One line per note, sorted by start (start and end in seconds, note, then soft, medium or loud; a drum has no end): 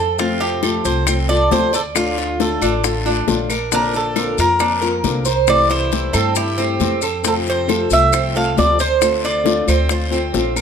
0.00 0.79 F2 medium
0.00 0.18 A4 medium
0.18 0.62 C3 medium
0.18 0.62 F3 medium
0.18 0.62 A3 medium
0.18 0.62 C4 medium
0.18 0.63 C4 medium
0.18 0.42 F4 medium
0.18 0.63 F4 medium
0.18 high bongo medium
0.18 long guiro medium
0.18 maracas medium
0.41 0.86 G4 medium
0.41 high bongo soft
0.41 maracas soft
0.63 0.84 C3 medium
0.63 0.84 F3 medium
0.63 0.85 A3 medium
0.63 0.84 C4 medium
0.63 0.83 F4 medium
0.63 1.06 A4 medium
0.63 high bongo medium
0.63 short guiro medium
0.63 claves medium
0.63 maracas soft
0.84 1.47 C2 medium
0.84 1.06 A3 soft
0.84 1.07 C4 soft
0.84 1.06 F4 soft
0.84 1.06 C5 medium
0.84 short guiro medium
0.84 maracas medium
1.07 1.28 F3 soft
1.07 1.29 A3 soft
1.07 1.29 C4 medium
1.07 1.28 C4 soft
1.07 1.28 F4 soft
1.07 1.13 C5 loud
1.07 high bongo medium
1.07 long guiro medium
1.07 claves medium
1.07 maracas medium
1.29 1.49 A3 soft
1.29 1.50 C4 soft
1.29 1.50 F4 soft
1.29 1.72 A4 medium
1.29 1.50 D5 medium
1.29 high bongo soft
1.29 maracas soft
1.50 2.55 D2 medium
1.50 1.72 C3 medium
1.50 1.72 F3 medium
1.50 1.72 A3 medium
1.50 1.72 C4 medium
1.50 1.73 F4 medium
1.50 1.74 C5 medium
1.50 high bongo soft
1.50 low bongo medium
1.50 short guiro medium
1.50 maracas soft
1.73 1.81 A4 medium
1.73 2.16 D5 medium
1.73 muted nylon-string guitar stroke medium
1.73 high bongo soft
1.73 short guiro medium
1.73 maracas medium
1.95 2.38 D3 medium
1.95 2.39 A3 medium
1.95 2.39 D4 medium
1.95 2.39 F4 medium
1.95 2.42 F4 medium
1.95 high bongo medium
1.95 long guiro medium
1.95 claves medium
1.95 maracas medium
2.18 2.61 F4 medium
2.18 high bongo soft
2.18 maracas soft
2.39 2.61 D3 medium
2.39 2.61 A3 medium
2.39 2.61 D4 medium
2.39 2.60 F4 medium
2.39 3.03 A4 medium
2.39 high bongo medium
2.39 short guiro medium
2.39 maracas soft
2.61 3.24 A1 medium
2.61 2.83 A3 soft
2.61 2.83 D4 medium
2.61 2.83 D4 soft
2.61 2.83 F4 soft
2.61 short guiro medium
2.61 claves medium
2.61 maracas medium
2.83 3.05 D3 soft
2.83 3.05 A3 medium
2.83 3.05 D4 soft
2.83 3.05 F4 medium
2.83 3.04 F4 medium
2.83 high bongo medium
2.83 long guiro medium
2.83 maracas medium
3.06 3.26 A3 soft
3.06 3.49 D4 medium
3.06 3.27 D4 soft
3.06 3.27 F4 soft
3.06 high bongo soft
3.06 maracas soft
3.27 4.32 A#1 medium
3.27 3.49 D3 medium
3.27 3.49 A3 medium
3.27 3.49 D4 medium
3.27 3.50 F4 medium
3.27 high bongo soft
3.27 low bongo medium
3.27 short guiro medium
3.27 maracas soft
3.50 3.71 A#4 medium
3.50 muted nylon-string guitar stroke medium
3.50 high bongo soft
3.50 short guiro medium
3.50 claves medium
3.50 maracas medium
3.71 4.15 D3 medium
3.71 4.16 A#3 medium
3.71 4.16 C4 medium
3.71 4.15 D4 medium
3.71 4.16 F4 medium
3.71 3.96 A#4 medium
3.71 high bongo medium
3.71 long guiro medium
3.71 maracas medium
3.94 4.39 A4 medium
3.94 high bongo soft
3.94 maracas soft
4.16 4.37 D3 medium
4.16 4.38 A#3 medium
4.16 4.38 C4 medium
4.16 4.38 F4 medium
4.16 4.59 A#4 medium
4.16 high bongo medium
4.16 short guiro medium
4.16 claves medium
4.16 maracas soft
4.38 5.00 F2 medium
4.38 4.60 A#3 soft
4.38 4.60 C4 soft
4.38 4.60 F4 soft
4.38 5.49 A#4 medium
4.38 short guiro medium
4.38 maracas medium
4.60 4.82 D3 soft
4.60 4.82 A#3 soft
4.60 4.82 C4 medium
4.60 4.82 D4 medium
4.60 4.81 F4 soft
4.60 high bongo medium
4.60 long guiro medium
4.60 claves medium
4.60 maracas medium
4.81 5.04 A#3 soft
4.81 5.04 C4 soft
4.81 5.04 F4 soft
4.81 5.25 A#4 medium
4.81 high bongo soft
4.81 maracas soft
5.04 6.08 C2 medium
5.04 5.25 D3 medium
5.04 5.26 A#3 medium
5.04 5.25 C4 medium
5.04 5.26 F4 medium
5.04 high bongo soft
5.04 low bongo medium
5.04 short guiro medium
5.04 maracas soft
5.25 5.69 C5 medium
5.25 muted nylon-string guitar stroke medium
5.25 high bongo soft
5.25 short guiro medium
5.25 maracas medium
5.47 5.91 C3 medium
5.47 5.91 E3 medium
5.47 5.92 A3 medium
5.47 5.91 C4 medium
5.47 5.92 E4 medium
5.47 5.70 D5 medium
5.47 high bongo medium
5.47 long guiro medium
5.47 claves medium
5.47 maracas medium
5.70 6.13 E4 medium
5.70 6.16 C5 medium
5.70 high bongo soft
5.70 maracas soft
5.92 6.14 C3 medium
5.92 6.14 E3 medium
5.92 6.14 A3 medium
5.92 6.13 C4 medium
5.92 6.12 E4 medium
5.92 high bongo medium
5.92 short guiro medium
5.92 maracas soft
6.13 6.77 G2 medium
6.13 6.34 A3 soft
6.13 6.35 C4 soft
6.13 6.36 C4 medium
6.13 6.35 E4 soft
6.13 6.35 A4 medium
6.13 short guiro medium
6.13 claves medium
6.13 maracas medium
6.35 6.57 E3 soft
6.35 6.57 A3 soft
6.35 6.58 C4 medium
6.35 6.58 E4 medium
6.35 6.57 E4 medium
6.35 6.99 G4 medium
6.35 high bongo medium
6.35 long guiro medium
6.35 maracas medium
6.58 6.79 A3 soft
6.58 7.01 C4 medium
6.58 6.80 C4 soft
6.58 6.79 E4 medium
6.58 high bongo soft
6.58 maracas soft
6.79 7.85 F2 medium
6.79 7.00 C3 medium
6.79 7.00 E3 medium
6.79 7.01 A3 medium
6.79 7.01 C4 medium
6.79 7.00 E4 medium
6.79 high bongo soft
6.79 low bongo medium
6.79 short guiro medium
6.79 maracas soft
7.01 7.24 A4 medium
7.01 muted nylon-string guitar stroke medium
7.01 high bongo soft
7.01 short guiro medium
7.01 claves medium
7.01 maracas medium
7.23 7.66 C3 medium
7.23 7.66 F3 medium
7.23 7.67 A3 medium
7.23 7.67 C4 medium
7.23 7.68 C4 medium
7.23 7.67 F4 medium
7.23 high bongo medium
7.23 long guiro medium
7.23 maracas medium
7.27 7.33 A4 medium
7.46 7.93 C5 medium
7.46 high bongo soft
7.46 maracas soft
7.67 7.89 C3 medium
7.67 7.90 F3 medium
7.67 7.90 A3 medium
7.67 7.90 C4 medium
7.67 7.89 F4 medium
7.67 8.12 A4 medium
7.67 high bongo medium
7.67 short guiro medium
7.67 claves medium
7.67 maracas soft
7.90 8.53 C2 medium
7.90 8.10 A3 soft
7.90 8.11 C4 soft
7.90 8.11 F4 soft
7.90 8.36 E5 loud
7.90 short guiro medium
7.90 maracas medium
8.11 8.33 F3 soft
8.11 8.34 A3 soft
8.11 8.34 C4 soft
8.11 8.35 C4 medium
8.11 8.33 F4 medium
8.11 high bongo medium
8.11 long guiro medium
8.11 claves medium
8.11 maracas medium
8.34 8.55 A3 soft
8.34 8.55 C4 soft
8.34 8.56 F4 medium
8.34 8.78 A4 medium
8.34 8.58 F5 medium
8.34 high bongo soft
8.34 maracas soft
8.56 9.62 D2 medium
8.56 8.78 C3 medium
8.56 8.78 F3 medium
8.56 8.78 A3 medium
8.56 8.78 C4 medium
8.56 8.79 F4 medium
8.56 8.79 D5 medium
8.56 high bongo soft
8.56 low bongo medium
8.56 short guiro medium
8.56 maracas soft
8.79 9.24 C5 medium
8.79 9.23 C5 medium
8.79 muted nylon-string guitar stroke medium
8.79 high bongo soft
8.79 short guiro medium
8.79 maracas medium
9.01 9.43 D3 medium
9.01 9.43 A3 medium
9.01 9.44 C4 medium
9.01 9.44 F4 medium
9.01 high bongo medium
9.01 long guiro medium
9.01 claves medium
9.01 maracas medium
9.24 9.67 F4 medium
9.24 9.69 D5 medium
9.24 high bongo soft
9.24 maracas soft
9.44 9.66 D3 medium
9.44 9.66 A3 medium
9.44 9.66 C4 medium
9.44 9.65 F4 medium
9.44 high bongo medium
9.44 short guiro medium
9.44 maracas soft
9.66 10.30 D2 medium
9.66 9.88 A3 soft
9.66 9.89 C4 soft
9.66 9.90 C4 medium
9.66 9.88 F4 soft
9.66 9.90 C5 medium
9.66 short guiro medium
9.66 claves medium
9.66 maracas medium
9.89 10.11 D3 soft
9.89 10.11 A3 soft
9.89 10.09 C4 medium
9.89 10.09 F4 soft
9.89 10.12 F4 medium
9.89 10.32 C5 medium
9.89 high bongo medium
9.89 long guiro medium
9.89 maracas medium
10.11 10.32 A3 soft
10.11 10.33 C4 soft
10.11 10.55 C4 medium
10.11 10.33 F4 medium
10.11 high bongo soft
10.11 maracas soft
10.33 10.61 A#1 medium
10.33 10.54 D3 medium
10.33 10.54 A3 medium
10.33 10.55 C4 medium
10.33 10.55 F4 medium
10.33 high bongo soft
10.33 low bongo medium
10.33 short guiro medium
10.33 maracas soft
10.55 10.61 A#4 medium
10.55 muted nylon-string guitar stroke medium
10.55 high bongo soft
10.55 short guiro medium
10.55 claves medium
10.55 maracas medium